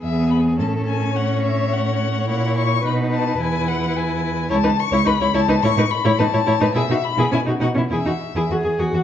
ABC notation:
X:1
M:2/4
L:1/16
Q:1/4=107
K:E
V:1 name="Violin"
e2 b2 a2 g2 | f2 e2 f4 | f2 c'2 b2 a2 | g2 f2 g4 |
a2 c'2 b2 a2 | c'2 b2 a4 | e2 b2 g2 f2 | e4 z4 |]
V:2 name="Violin"
G4 A4 | c8- | c4 B4- | B8 |
c B z c B c c B | c B z c B c c B | G F z G E F F E | G F z G F G G F |]
V:3 name="Viola"
B,4 C4- | C8 | E4 D4 | E8 |
E D z E D E E D | E D z E D E E D | E D z E C D D C | E D z E G2 F2 |]
V:4 name="Cello" clef=bass
E,,4 A,,4- | A,,8 | ^A,,4 B,,4 | E,,8 |
C,, C,, z C,, C,, C,, C,, C,, | A,, A,, z A,, A,, A,, A,, A,, | B,, B,, z B,, B,, B,, B,, B,, | E,, E,, z E,, E,, E,, E,, E,, |]